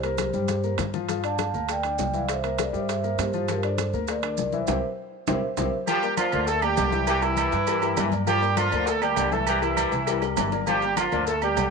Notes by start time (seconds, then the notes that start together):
Already playing: C2 G4 C5
0.03 A#3 A#4, high bongo, high conga, high timbale, maracas
0.18 G4 C5, high bongo, high conga, high timbale, maracas
0.33 G2 G3 G4, high bongo, high conga, maracas
0.48 high bongo, high conga, high timbale, maracas
0.63 A#3 A#4, high bongo, maracas
0.78 G2, high bongo, low bongo, low conga, high timbale, low timbale, maracas
0.94 F3 F4, low conga, maracas
1.09 F3 F4, high bongo, high conga, high timbale, maracas
1.24 D4 D5 F5 A5, high bongo, high conga, high timbale, maracas
1.38 high bongo, high conga, high timbale, maracas
1.54 D2 A#3 A#4, high bongo, maracas
1.69 D5 G5, high bongo, high conga, high timbale, maracas
1.83 D4 D5, high bongo, high conga, high timbale, maracas
1.98 C2, high bongo, low bongo, high conga, low timbale, maracas
2.14 E3 E4 D5 F5, high conga, maracas
2.29 C5 E5, high bongo, high conga, high timbale, maracas
2.44 A#3 A#4, high bongo, high conga, high timbale, maracas
2.58 A#4 D5, high bongo, high conga, high timbale, maracas
2.73 G2 G3 G4 C5 E5, high bongo, high conga, maracas
2.89 C5 E5, high bongo, high conga, high timbale, maracas
3.04 A#3 A#4, high bongo, high conga, maracas
3.18 G2 G4 C5, high bongo, low bongo, high conga, high timbale, low timbale, maracas
3.33 F3 F4, maracas
3.48 F3 F4 G4 A#4, high bongo, high conga, high timbale, maracas
3.63 D4 A4 C5 D5, high bongo, high conga, high timbale, maracas
3.78 high bongo, high conga, high timbale, maracas
3.93 D2 A#3 A#4, high bongo, maracas
4.07 A#4 D5, high bongo, high conga, high timbale, maracas
4.23 D4 D5, high bongo, high conga, high timbale, maracas
4.37 C2 A#4 D5, high bongo, low bongo, high conga, maracas
4.52 E3 E4 C5 E5, high conga, maracas
4.67 C2 C4 E4 G4 A#4 C5 E5, low bongo, high conga, high timbale, maracas
5.27 C2 C4 E4 G4 A#4 C5 E5, low bongo, high conga, high timbale, maracas
5.57 C2 C4 E4 G4 A#4 C5 E5, low bongo, high conga, high timbale, maracas
5.87 F3 G3 F4 G4 F5, cowbell, high conga, low agogo, maracas
6.03 A#3 A#4 D5, high conga, maracas
6.17 D3 F3 F4, cowbell, high conga, low timbale, low agogo, maracas
6.32 D2 D3 A#3 A#4 D5, cowbell, low agogo, maracas
6.47 A3 A4, cowbell, high conga, maracas
6.62 G3 A#3 G4 A#4 D5, high conga, low agogo, maracas
6.77 C2 D3, cowbell, high conga, low timbale, low agogo, maracas
6.92 E3 E4 E5, high conga, maracas
7.07 E3 G3 G4, cowbell, high conga, low agogo, maracas
7.22 E3 G3 E4 G4 A#4, high conga, low agogo, maracas
7.37 G3, cowbell, high conga, low timbale, low agogo, maracas
7.52 G2 E3 E4 E5, cowbell, high conga, maracas
7.67 E3 G3 G4 A#4, cowbell, high conga, low agogo, maracas
7.82 G3 G4 A#4, high conga, low agogo, maracas
7.97 G2 E3, cowbell, high conga, low timbale, low agogo, maracas
8.11 A#3 A#4 D5, cowbell, high conga, maracas
8.27 F3 G3 F4 G4 F5, cowbell, high conga, low agogo, maracas
8.41 A#3 A#4 D5, high conga, maracas
8.57 D3 F3 F4, cowbell, high conga, low timbale, low agogo, maracas
8.71 D2 D3 A#3 A#4 D5, cowbell, low agogo, maracas
8.87 A3 A4, cowbell, high conga, maracas
9.02 G3 A#3 G4 A#4 D5, high conga, low agogo, maracas
9.16 C2 D3, cowbell, high conga, low timbale, low agogo, maracas
9.32 E3 A3 E4 A4 E5, high conga, maracas
9.47 E3 G3 G4, cowbell, high conga, low agogo, maracas
9.61 E3 G3 E4 G4 A#4, high conga, low agogo, maracas
9.76 G3, cowbell, high conga, low timbale, low agogo, maracas
9.91 C2 E3 E4 E5, cowbell, high conga, maracas
10.06 E3 G3 G4 A#4, cowbell, high conga, low agogo, maracas
10.22 G3 G4 A#4, high bongo, high conga, low agogo, maracas
10.36 G1 E3, cowbell, low bongo, high conga, low timbale, low agogo, maracas
10.52 A#3 A#4 D5, cowbell, low bongo, high conga, maracas
10.67 F3 G3 F4 G4 F5, cowbell, low agogo, maracas
10.82 A#3 A#4 D5, high conga, maracas
10.97 D3 F3 F4, cowbell, high conga, low timbale, low agogo, maracas
11.12 D2 D3 A#3 A#4 D5, cowbell, low agogo, maracas
11.27 A3 A4, cowbell, high conga, maracas
11.42 G3 A#3 G4 A#4 D5, high conga, low agogo, maracas
11.56 C2 D3, cowbell, high conga, low timbale, low agogo, maracas